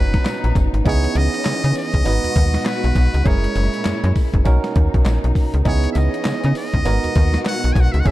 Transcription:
Already playing: F#1 A#2 B2 C#4 D#4 F#4 B4
0.00 B4
0.14 kick, snare, closed hi-hat
0.25 snare, clap, closed hi-hat, tambourine, cowbell
0.44 A#1, closed hi-hat
0.55 F#1, kick, closed hi-hat, tambourine
0.74 G#1, closed hi-hat
0.85 C#2 E3 B3 C#4 D#4 E4 G#4 C#5, kick, closed hi-hat, tambourine, cowbell
1.04 closed hi-hat
1.15 C#2 D#5, closed hi-hat, tambourine
1.34 closed hi-hat
1.45 C#3, snare, clap, closed hi-hat, tambourine, cowbell
1.64 C#3, closed hi-hat
1.75 D#5, open hi-hat, tambourine
1.94 C#2, kick, closed hi-hat
2.04 G#1 B2 G#3 B3 D#4 F#4 B4, closed hi-hat, tambourine, cowbell
2.24 D#2, closed hi-hat
2.36 D#2, kick, closed hi-hat
2.54 snare, closed hi-hat
2.65 B4, snare, clap, closed hi-hat, tambourine, cowbell
2.84 B1, closed hi-hat
2.95 B1, kick, closed hi-hat, tambourine
3.14 C#2, closed hi-hat
3.24 F#1 A#2 C#4 E4 G#4 A#4 C#5, kick, closed hi-hat, tambourine, cowbell
3.44 closed hi-hat
3.56 F#1, closed hi-hat, tambourine
3.74 closed hi-hat
3.85 F#2, snare, clap, closed hi-hat, tambourine, cowbell
4.04 F#2, closed hi-hat
4.16 kick, open hi-hat, tambourine
4.34 F#1, kick, closed hi-hat
4.44 B1 B2 A#3 C#4 D#4 F#4 A#4, kick, closed hi-hat, tambourine, cowbell
4.64 snare, closed hi-hat
4.76 D#2, kick, closed hi-hat
4.94 B1, kick, closed hi-hat
5.05 A#1, snare, clap, closed hi-hat, tambourine, cowbell
5.24 B1, closed hi-hat
5.35 kick, open hi-hat, tambourine
5.54 C#2, closed hi-hat
5.65 C#2 E3 B3 C#4 D#4 E4 G#4 C#5, kick, closed hi-hat, tambourine, cowbell
5.84 closed hi-hat
5.92 C#2 E5, closed hi-hat, tambourine
5.98 D#5
6.14 closed hi-hat
6.25 C#3, snare, clap, closed hi-hat, tambourine, cowbell
6.44 C#3, closed hi-hat
6.55 D#5, open hi-hat, tambourine
6.74 C#2, kick, closed hi-hat
6.85 G#1 B2 G#3 B3 D#4 F#4 A#4, closed hi-hat, tambourine, cowbell
7.04 D#2, closed hi-hat
7.15 D#2, kick, closed hi-hat
7.34 snare, closed hi-hat
7.45 F#5, snare, clap, closed hi-hat, tambourine, cowbell
7.64 B1, closed hi-hat
7.73 B1 G#5, kick, closed hi-hat, tambourine
7.80 F#5
7.92 C#2 E5, closed hi-hat
8.00 F#5
8.05 F#1 A#2 G#3 C#4 E4 G#4 A4 E5, kick, closed hi-hat, tambourine, cowbell

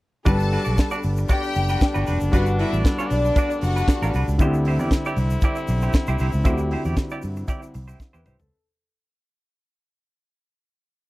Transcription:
0.25 G1 D3 G3 B3 D4 F#4 G4 A4 B4 A5, kick, closed hi-hat, shaker
0.39 muted clean electric guitar stroke, shaker
0.52 D4 F#4 B4, open hi-hat
0.65 B1 D4 F#4 D5, shaker
0.78 muted clean electric guitar stroke, kick, snare, closed hi-hat, shaker
0.91 D4 F#4 D5, shaker
1.03 G1, muted clean electric guitar stroke, open hi-hat, shaker
1.17 muted clean electric guitar stroke, shaker
1.29 D4 F#4 G4 D5 G5, kick, closed hi-hat, shaker
1.43 muted clean electric guitar stroke, shaker
1.55 F#1, muted clean electric guitar stroke, open hi-hat, shaker
1.69 D4 F#4 B4, shaker
1.81 muted clean electric guitar stroke, kick, snare, closed hi-hat, shaker
1.94 G1 D4 F#4 B4, shaker
2.06 F1 D4 F#4 B4, open hi-hat, shaker
2.21 F#1, shaker
2.32 G1 G3 D4 F#4 B4 F#5, kick, closed hi-hat, shaker
2.46 muted clean electric guitar stroke, shaker
2.59 D4 E4 F#4 B4 E5, open hi-hat
2.73 A1 D4 F#4 D5, shaker
2.85 muted clean electric guitar stroke, kick, snare, closed hi-hat, shaker
2.99 D4 F#4 D5, shaker
3.10 B1 D4 D5, muted clean electric guitar stroke, open hi-hat, shaker
3.25 muted clean electric guitar stroke, shaker
3.36 D4 F#4 D5, kick, closed hi-hat, shaker
3.51 muted clean electric guitar stroke, shaker
3.61 F#1 F#4 F#5, muted clean electric guitar stroke, open hi-hat, shaker
3.76 D4 F#4 B4, shaker
3.88 muted clean electric guitar stroke, kick, snare, closed hi-hat, shaker
4.02 A1 D4 F#4 B4, shaker
4.13 C2 D4 F#4 B4, open hi-hat, shaker
4.28 C#2, muted clean electric guitar stroke, shaker
4.38 D2 D3 C4 E4 G4 C5, kick, closed hi-hat, shaker
4.54 muted clean electric guitar stroke, shaker
4.65 E4 G4 C5, open hi-hat
4.79 E2 E4 G4 D5, shaker
4.91 muted clean electric guitar stroke, kick, snare, closed hi-hat, shaker
5.05 E4 G4 D5, shaker
5.16 C2, muted clean electric guitar stroke, open hi-hat, shaker
5.30 muted clean electric guitar stroke, shaker
5.41 E4 G4 D5, kick, closed hi-hat, shaker
5.56 muted clean electric guitar stroke, shaker
5.68 B1, muted clean electric guitar stroke, open hi-hat, shaker
5.81 E4 G4 C5, shaker
5.93 muted clean electric guitar stroke, kick, snare, closed hi-hat, shaker
6.07 C2 E4 G4 C5, shaker
6.19 C2 E4 G4 C5, open hi-hat, shaker
6.33 C#2, muted clean electric guitar stroke, shaker
6.44 D2 D3 C4 E4 F#4 G4 C5, kick, closed hi-hat, shaker
6.53 G4
6.58 muted clean electric guitar stroke, shaker
6.71 E4 G4 C5, open hi-hat
6.85 E2 E4 G4 D5, shaker
6.96 muted clean electric guitar stroke, kick, snare, closed hi-hat, shaker
7.10 E4 G4 D5, shaker
7.22 G2, muted clean electric guitar stroke, open hi-hat, shaker
7.36 muted clean electric guitar stroke, shaker
7.48 E4 G4 D5, kick, closed hi-hat, shaker
7.62 muted clean electric guitar stroke, shaker
7.74 C2, muted clean electric guitar stroke, open hi-hat, shaker
7.88 E4 G4 C5, shaker
8.00 muted clean electric guitar stroke, kick, snare, shaker
8.13 E2 E4 G4 B4 C5, shaker
8.25 C2 E4 G4 C5, mid tom, shaker
8.39 C#2 A4, floor tom, shaker

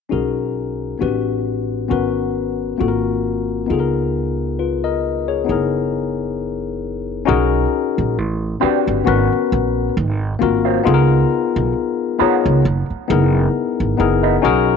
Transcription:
0.09 B1 C#4 D#4 F#4 G#4 A#4
0.99 A1 B3 D4 F#4 G4 B4
1.06 C4
1.89 G#1 B3 C#4 F#4 A#4 B4
2.78 G#1 A#3 C4 F4 F#4 A4
2.88 A#4
3.66 C#2 B3 D#4 F4
3.72 G#4 A4
3.80 A#4
4.59 F4 B4
4.84 A#4 D#5
5.28 G#4 C#5
5.45 B3 D#4 E4
5.49 F#1 G#4 A#4
7.25 B1 C#4 D#4 F#4 G#4 A#4
7.98 A#1
8.18 A1
8.60 C4 D4 F#4 G4 B4, muted upright bass stroke
8.88 G1
9.05 G#1 B3 C#4 F#4 A#4 B4
9.32 muted upright bass stroke
9.52 A#1
9.97 G#1
10.39 G#1 A#3 C4 F4 F#4 A#4
10.65 F#3 C4 F4
10.84 C#2 B3 D#4 F4 G#4 A4
10.94 A#4
11.56 B1
12.18 F3 B3 D#4 F4 G#4 C#5, muted upright bass stroke
12.46 C#2
12.65 F#1
12.90 muted upright bass stroke
13.08 F#1 B3 D#4 E4 G#4 A#4
13.80 G#1
13.97 F#1 B3 D#4 E4 G#4 A#4
14.23 E3 B3 D#4
14.42 B1 C#4 D#4 F#4 G#4 A#4

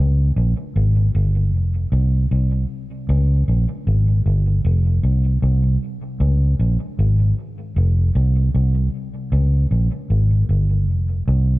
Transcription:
Already playing: C#2
0.36 A#1
0.76 G#1
1.15 G1
1.53 F1
1.92 C2
2.31 C2
3.09 C#2
3.48 A#1
3.87 G#1
4.26 G1
4.65 F1
5.03 C2
5.42 C2
6.20 C#2
6.59 A#1
6.99 G#1
7.76 F1
8.15 C2
8.55 C2
9.32 C#2
9.71 A#1
10.10 G#1
10.49 G1
10.88 F1
11.28 C2

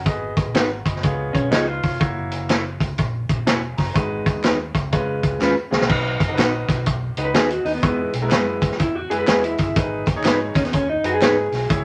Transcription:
0.05 G#1 B3 F#4 G#4 D#5, kick, closed hi-hat, tambourine
0.37 kick, closed hi-hat, tambourine
0.46 A#1
0.55 G#1 B3 D#4 F#4 A#4 B4 F#5, snare, clap, closed hi-hat, tambourine
0.85 F#1 D#5 B5, kick, closed hi-hat, tambourine
0.96 snare
1.03 C#2 B3 F4 G#4 C#5, kick, closed hi-hat, tambourine
1.33 B1 C#4, kick, closed hi-hat, tambourine
1.51 C#2 B3 D#4 F4 G#4 B4 C#5, snare, clap, closed hi-hat, tambourine
1.67 F4
1.83 F1 F4 C#5, kick, open hi-hat, tambourine
2.00 F#1 A#3 E4 F#4 C#5, kick, closed hi-hat, tambourine
2.31 closed hi-hat, tambourine
2.49 A#3 E4 F#4 C#5, snare, clap, closed hi-hat, tambourine
2.80 C#2, kick, closed hi-hat, tambourine
2.98 A#1, kick, closed hi-hat, tambourine
3.29 A#1, kick, closed hi-hat
3.46 E1 A#3 E4 F#4 C#5 G#5, snare, clap, closed hi-hat, tambourine
3.77 F#1 C#5 A#5, kick, snare, open hi-hat, tambourine
3.94 G#1 G#3 D#4 F#4 B4, kick, closed hi-hat, tambourine
4.26 kick, closed hi-hat, tambourine
4.36 E2
4.44 D#2 B3 D#4 F#4 B4, snare, clap, closed hi-hat, tambourine
4.75 C#2, kick, closed hi-hat, tambourine
4.92 C#3 G#3 C#4 F4 B4, kick, closed hi-hat, tambourine
5.23 C#2, kick, closed hi-hat, tambourine
5.41 D#2 G#3 C#4 F4 B4, snare, clap, tambourine
5.71 C#2 G#3 C#4 F4 G#4, snare, tambourine
5.81 B1, snare
5.88 B1 D#4 F#4 B4, kick, crash, tambourine
6.20 F#1, kick, closed hi-hat, tambourine
6.28 D#4 F#4 A#4
6.34 A#1 B3 D#4 B4, closed hi-hat
6.38 F#4 B4, snare, clap, tambourine
6.69 B1, kick, snare, closed hi-hat, tambourine
6.86 kick, closed hi-hat, tambourine
7.17 C#2 D#4 F#4 B4, closed hi-hat, tambourine
7.25 B4
7.34 D#2 B3 D#4 F#4 G#4 B4 D#5, snare, clap, closed hi-hat, tambourine
7.49 F#4, closed hi-hat
7.65 D#2 D#4 B4, open hi-hat, tambourine
7.74 B3
7.82 E2 G#3 B3 E4 F#4 B4, kick, closed hi-hat, tambourine
8.13 B1, closed hi-hat, tambourine
8.22 G#3 B3 E4 F#4 A#4
8.28 F#2 G#3 B3 B4, snare, clap, closed hi-hat, tambourine
8.33 F#4 B4
8.61 E2, kick, closed hi-hat, tambourine
8.71 snare
8.78 E4, kick, closed hi-hat, tambourine
8.95 F#4
9.10 F#2 G#3 B3 E4 F#4 G#4 B4, closed hi-hat
9.19 B4
9.27 E2 G#3 B3 F#4 G#4 B4 D#5, snare, clap, closed hi-hat, tambourine
9.44 E4, closed hi-hat
9.58 F#1 G#4 E5, kick, closed hi-hat, tambourine
9.76 G#1 D#4 G#4 B4, kick, closed hi-hat, tambourine
10.06 D#2, kick, closed hi-hat, tambourine
10.16 D#4 G#4 C#5
10.24 G#2 B3 D#4 G#4 B4, snare, clap, closed hi-hat, tambourine
10.54 D#2 C#4, kick, snare, closed hi-hat, tambourine
10.65 B3, snare, closed hi-hat
10.72 C#4, kick, closed hi-hat, tambourine
10.89 D#4
11.04 F#2 D#4 F#4 G#4 B4, closed hi-hat
11.14 G#4
11.21 G#2 B3 D#4 G#4 B4, snare, clap, closed hi-hat, tambourine
11.52 B1, snare, open hi-hat, tambourine
11.69 C#2 E4 G#4 C#5, kick, closed hi-hat, tambourine

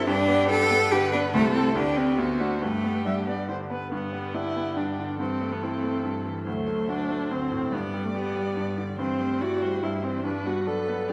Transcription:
Already playing: G3
0.07 G2 D4 G4 B4
0.28 B3
0.50 D4 A4
0.71 B3
0.92 D3 G4 B4
1.12 B3 D4
1.33 C2 A3 A4 C5
1.54 C4 E4 A4
1.75 D2 D4 G4 B4
1.96 C4 D4 G4
2.18 D2 B3 F#4 C5
2.40 A3 D4 F#4
2.62 G2 A3 G4 B4
2.84 B3
3.05 G3 D4 E5
3.27 B3 D5
3.48 D3 C5
3.70 B3 B4
3.92 G2 D3 B3 G4
4.13 B3
4.34 D4 E4
4.56 B3
4.77 G2 D4
4.99 D3
5.20 G2 E3 C4 A4
5.41 A3
5.52 B3
5.62 C4 E4
5.83 A3
6.04 G2
6.25 E3
6.46 D2 F#3 A3 C5
6.68 A3
6.89 D4 F#4
7.10 A3
7.31 D2 C4
7.52 A2
7.72 G2 G3 B3 D5
7.94 G3
8.05 A3
8.14 B3 G4
8.36 G3
8.57 G2
8.78 D3
8.98 G2 E3 C4 C5
9.20 G3 A3
9.41 E4 F#4 D5
9.62 G3 C5
9.82 G2 G3 E4 C5
10.03 E3 C4
10.24 G2 G3 D4 B4
10.45 B3 F#4
10.66 F#3 D4 A4 B4
10.88 B3
11.09 G2 G4 D5

